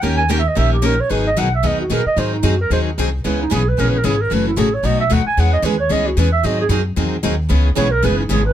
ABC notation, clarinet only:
X:1
M:4/4
L:1/8
Q:"Swing" 1/4=225
K:Eb
V:1 name="Clarinet"
g a (3g =e _e =e G B _d | [K:G#m] B d f e d F A d | ^B D F A B z3 | B D G B (3A B A G A |
B E G c d e f g | f d B c d F B e | d G z6 | z2 c A B D G B |]